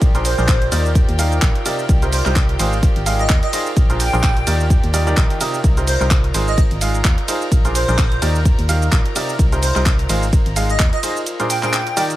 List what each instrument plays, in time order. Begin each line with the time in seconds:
Already playing: analog synth pad F4 A#4 D5, string section G4 G5
0.02 fm bass A#1, kick, closed hi-hat, shaker
0.15 grand piano A#2 D4 G#4 A#4 C5, closed hi-hat, shaker
0.25 digital synth lead C5, open hi-hat, ride, shaker
0.38 fm bass A#1, grand piano A#2 D4 G#4 A#4 C5, shaker
0.48 kick, clap, closed hi-hat, shaker
0.62 closed hi-hat
0.72 fm bass D#2, grand piano D#3 D#4 G4 A#4 D5, open hi-hat, ride, shaker
0.85 shaker
0.95 kick, closed hi-hat, shaker
1.09 fm bass D#2, closed hi-hat
1.19 grand piano D#3 D#4 G4 A#4 F5, open hi-hat, ride, shaker
1.32 closed hi-hat, shaker
1.42 fm bass A#1, kick, clap, closed hi-hat, shaker
1.55 closed hi-hat
1.66 grand piano C3 D#4 G4 A#4 D5, open hi-hat, ride, shaker
1.79 shaker
1.89 fm bass C2, kick, closed hi-hat, shaker
2.02 grand piano C3 D#4 G4 A#4 C5, closed hi-hat, shaker
2.13 digital synth lead C5, open hi-hat, ride, shaker
2.26 fm bass C2, grand piano C3 D#4 G4 A#4 C5, clap, shaker
2.36 kick, clap, closed hi-hat, shaker
2.49 closed hi-hat
2.59 fm bass G#1, grand piano G#3 D#4 F4 G#4 C5, open hi-hat, ride, shaker
2.73 shaker
2.83 kick, closed hi-hat, shaker
2.96 fm bass G#1, closed hi-hat
3.06 grand piano G#3 D#4 F4 G#4 F5, open hi-hat, ride, shaker
3.19 digital synth lead D#5, closed hi-hat, shaker
3.29 fm bass D#2, kick, clap, closed hi-hat, shaker
3.43 digital synth lead D#5, closed hi-hat
3.53 grand piano D#4 F4 G#4 C5, digital synth lead D#5, open hi-hat, ride, shaker
3.66 shaker
3.77 fm bass A#1, kick, closed hi-hat, shaker
3.90 grand piano A#2 D4 G#4 A#4 C5, closed hi-hat, shaker
4.00 digital synth lead G5, open hi-hat, ride, shaker
4.13 fm bass A#1, grand piano A#2 D4 G#4 A#4 C5, shaker
4.23 kick, clap, closed hi-hat, shaker
4.37 closed hi-hat
4.47 fm bass D#2, grand piano D#3 D#4 G4 A#4 D5, open hi-hat, ride, shaker
4.60 shaker
4.70 kick, closed hi-hat, shaker
4.84 fm bass D#2, closed hi-hat
4.94 grand piano D#3 D#4 G4 A#4 D5, open hi-hat, ride, shaker
5.07 grand piano D#3 D#4 G4 A#4 D5, closed hi-hat, shaker
5.17 fm bass A#1, grand piano D#4 G4 A#4, kick, clap, closed hi-hat, shaker
5.30 closed hi-hat
5.41 grand piano C3 D#4 G4 A#4 D#5, open hi-hat, ride, shaker
5.54 shaker
5.64 fm bass C2, string section A#4 A#5, kick, closed hi-hat, shaker
5.77 grand piano C3 D#4 G4 A#4 C5, closed hi-hat, shaker
5.87 digital synth lead C5, open hi-hat, ride, shaker
6.01 fm bass C2, grand piano C3 D#4 G4 A#4 C5, clap, shaker
6.11 kick, clap, closed hi-hat, shaker
6.24 closed hi-hat
6.34 fm bass G#1, grand piano G#3 D#4 F4 G#4 C5, open hi-hat, ride, shaker
6.48 digital synth lead D#5, shaker
6.58 kick, closed hi-hat, shaker
6.71 fm bass G#1, closed hi-hat
6.81 grand piano G#3 D#4 F4 G#4 F5, open hi-hat, ride, shaker
6.95 closed hi-hat, shaker
7.05 fm bass D#2, kick, clap, closed hi-hat, shaker
7.18 closed hi-hat
7.28 grand piano D#4 F4 G#4 C5, open hi-hat, ride, shaker
7.42 shaker
7.52 fm bass A#1, kick, closed hi-hat, shaker
7.65 grand piano A#2 D4 G#4 A#4 C5, closed hi-hat, shaker
7.75 digital synth lead C5, open hi-hat, ride, shaker
7.88 fm bass A#1, grand piano A#2 D4 G#4 A#4 C5, shaker
7.98 kick, clap, closed hi-hat, shaker
8.12 closed hi-hat
8.22 fm bass D#2, grand piano D#3 D#4 G4 A#4 D5, open hi-hat, ride, shaker
8.35 shaker
8.45 kick, closed hi-hat, shaker
8.59 fm bass D#2, closed hi-hat
8.69 grand piano D#3 D#4 G4 A#4 F5, open hi-hat, ride, shaker
8.82 closed hi-hat, shaker
8.92 fm bass A#1, kick, clap, closed hi-hat, shaker
9.06 closed hi-hat
9.16 grand piano C3 D#4 G4 A#4 D5, open hi-hat, ride, shaker
9.29 shaker
9.39 fm bass C2, kick, closed hi-hat, shaker
9.52 grand piano C3 D#4 G4 A#4 C5, closed hi-hat, shaker
9.62 digital synth lead C5, open hi-hat, ride, shaker
9.76 fm bass C2, grand piano C3 D#4 G4 A#4 C5, clap, shaker
9.86 kick, clap, closed hi-hat, shaker
9.99 closed hi-hat
10.09 fm bass G#1, grand piano G#3 D#4 F4 G#4 C5, analog synth pad F4, open hi-hat, ride, shaker
10.23 shaker
10.33 kick, closed hi-hat, shaker
10.46 fm bass G#1, closed hi-hat
10.56 grand piano G#3 D#4 F4 G#4 F5, open hi-hat, ride, shaker
10.69 digital synth lead D#5, closed hi-hat, shaker
10.80 fm bass D#2, kick, clap, closed hi-hat, shaker
10.93 digital synth lead D#5, closed hi-hat
11.03 grand piano D#4 F4 G#4 C5, open hi-hat, ride, shaker
11.17 shaker
11.26 closed hi-hat, shaker
11.40 grand piano A#2 D4 G#4 A#4 C5, closed hi-hat, shaker
11.50 digital synth lead G5, open hi-hat, ride, shaker
11.63 grand piano A#2 D4 G#4 A#4 C5, clap, shaker
11.73 clap, closed hi-hat, shaker
11.87 closed hi-hat
11.97 grand piano D#3 D#4 G4 A#4 D5, open hi-hat, ride, shaker
12.10 closed hi-hat, shaker